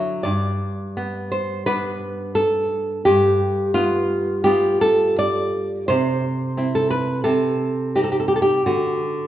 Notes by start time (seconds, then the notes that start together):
Already playing: D3 F#3 D4 E4 E5
0.23 G2 D5
0.97 B3
1.32 C5
1.66 B3 D4 B4
2.35 A4
3.05 G2 G4
3.74 B3 F4
4.44 B3 F4 G4
4.81 A4
5.19 D5
5.88 C3 C5
6.57 C4 E4
6.75 A4
6.90 B4
7.24 C3 A4
7.95 C4 D#4 G4
8.04 A4
8.12 G4
8.20 A4
8.28 G4
8.36 A4
8.42 G4
8.66 D3 F#4